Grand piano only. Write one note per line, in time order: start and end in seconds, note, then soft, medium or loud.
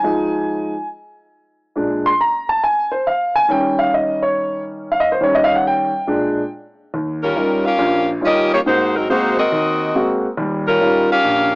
0.00 0.72 F3 soft
0.00 0.72 G#3 soft
0.00 0.86 G#5 medium
0.04 0.72 D#4 medium
1.76 2.09 A#2 medium
1.76 2.09 G#3 soft
1.76 2.09 D4 medium
2.06 2.19 C6 loud
2.21 2.48 A#5 medium
2.49 2.62 A5 medium
2.64 2.91 G#5 medium
2.92 3.05 C5 medium
3.07 3.35 F5 medium
3.36 3.49 G#5 loud
3.48 5.17 D#3 medium
3.48 5.17 G3 medium
3.48 5.17 C#4 medium
3.48 3.78 G5 medium
3.79 3.92 F5 medium
3.94 4.21 D#5 medium
4.23 4.62 C#5 medium
4.92 5.06 F5 medium
5.00 5.10 D#5 medium
5.12 5.20 C5 medium
5.21 5.89 D#3 medium
5.21 5.89 G3 soft
5.21 5.90 C#4 medium
5.21 5.36 C#5 medium
5.35 5.49 D#5 medium
5.44 5.54 F5 medium
5.56 5.63 F#5 medium
5.67 6.48 G5 medium
6.07 6.40 A#2 soft
6.07 6.40 G#3 soft
6.07 6.41 D4 medium
6.94 7.31 D#2 medium
7.36 7.67 G3 medium
7.36 7.67 C#4 soft
7.36 7.67 D#4 soft
7.36 7.67 F4 medium
7.78 8.16 A#1 medium
7.78 8.16 A#2 medium
8.21 8.52 G3 soft
8.21 8.52 C#4 soft
8.21 8.53 D#4 soft
8.21 8.53 F4 medium
8.66 9.03 G#2 medium
9.09 9.39 G#3 soft
9.09 9.39 A#3 soft
9.09 9.40 C4 soft
9.09 9.40 F#4 medium
9.52 9.89 D#2 medium
9.95 10.25 G#3 soft
9.95 10.25 A#3 soft
9.95 10.25 C4 soft
9.95 10.26 F#4 medium
10.37 10.75 D#2 medium
10.37 10.75 G3 medium
10.81 11.11 G3 medium
10.81 11.11 C#4 soft
10.81 11.11 D#4 soft
10.81 11.12 F4 medium
11.24 11.55 A#1 medium